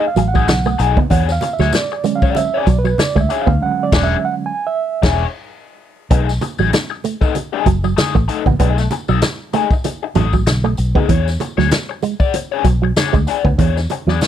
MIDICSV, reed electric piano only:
0, 0, Header, 1, 2, 480
1, 0, Start_track
1, 0, Tempo, 623701
1, 857, Time_signature, 4, 2, 24, 8
1, 10984, End_track
2, 0, Start_track
2, 0, Title_t, "Reed electric piano"
2, 0, Program_c, 0, 4
2, 56, Note_on_c, 0, 77, 99
2, 214, Note_on_c, 0, 78, 92
2, 221, Note_off_c, 0, 77, 0
2, 665, Note_off_c, 0, 78, 0
2, 854, Note_on_c, 0, 78, 95
2, 927, Note_off_c, 0, 78, 0
2, 1017, Note_on_c, 0, 77, 102
2, 1166, Note_off_c, 0, 77, 0
2, 1180, Note_on_c, 0, 76, 84
2, 1339, Note_on_c, 0, 74, 94
2, 1343, Note_off_c, 0, 76, 0
2, 1571, Note_on_c, 0, 50, 55
2, 1577, Note_on_c, 0, 54, 49
2, 1577, Note_on_c, 0, 56, 54
2, 1580, Note_on_c, 0, 61, 68
2, 1659, Note_on_c, 0, 77, 90
2, 1668, Note_off_c, 0, 74, 0
2, 1819, Note_on_c, 0, 76, 117
2, 1823, Note_off_c, 0, 77, 0
2, 1905, Note_off_c, 0, 50, 0
2, 1908, Note_off_c, 0, 54, 0
2, 1908, Note_off_c, 0, 56, 0
2, 1909, Note_off_c, 0, 61, 0
2, 1980, Note_on_c, 0, 74, 97
2, 1983, Note_off_c, 0, 76, 0
2, 2128, Note_off_c, 0, 74, 0
2, 2143, Note_on_c, 0, 71, 90
2, 2304, Note_on_c, 0, 74, 111
2, 2306, Note_off_c, 0, 71, 0
2, 2466, Note_off_c, 0, 74, 0
2, 2466, Note_on_c, 0, 76, 85
2, 2627, Note_off_c, 0, 76, 0
2, 2629, Note_on_c, 0, 77, 90
2, 2777, Note_on_c, 0, 50, 60
2, 2781, Note_on_c, 0, 54, 62
2, 2784, Note_on_c, 0, 56, 57
2, 2787, Note_on_c, 0, 61, 64
2, 2788, Note_off_c, 0, 77, 0
2, 2790, Note_on_c, 0, 78, 106
2, 2949, Note_off_c, 0, 78, 0
2, 2949, Note_on_c, 0, 74, 99
2, 3106, Note_on_c, 0, 76, 88
2, 3109, Note_off_c, 0, 74, 0
2, 3267, Note_off_c, 0, 76, 0
2, 3270, Note_on_c, 0, 78, 98
2, 3339, Note_off_c, 0, 78, 0
2, 3432, Note_on_c, 0, 80, 98
2, 3468, Note_off_c, 0, 50, 0
2, 3470, Note_off_c, 0, 54, 0
2, 3471, Note_off_c, 0, 56, 0
2, 3472, Note_off_c, 0, 61, 0
2, 3590, Note_off_c, 0, 80, 0
2, 3591, Note_on_c, 0, 76, 100
2, 4035, Note_off_c, 0, 76, 0
2, 10984, End_track
0, 0, End_of_file